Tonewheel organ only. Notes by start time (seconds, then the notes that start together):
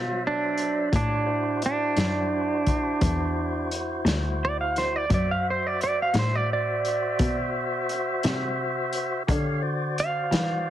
Already playing: F#3 C5 E5
0.92 F4 G4 C#5
1.26 E4 F#4 C5
5.09 F#4 C5 E5
9.27 G4 C#5 F5
9.62 F#4 C5 D5